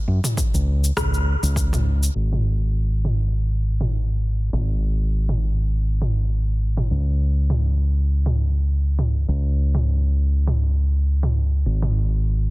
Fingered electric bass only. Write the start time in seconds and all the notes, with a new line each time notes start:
0.08 F#2
0.54 C#2
0.97 C#2
1.43 C#2
2.15 G#1
4.53 G#1
6.91 C#2
9.28 C#2
11.66 G#1